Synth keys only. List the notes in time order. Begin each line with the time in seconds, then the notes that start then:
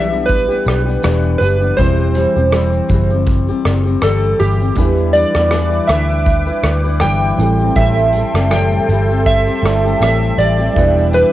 Already playing: E5
0.26 B4
1.38 B4
1.77 C5
4.02 A4
4.40 G4
5.13 D5
5.87 E5
7.01 G5
7.76 E5
8.51 G5
9.26 E5
10.02 E5
10.38 D5
11.14 B4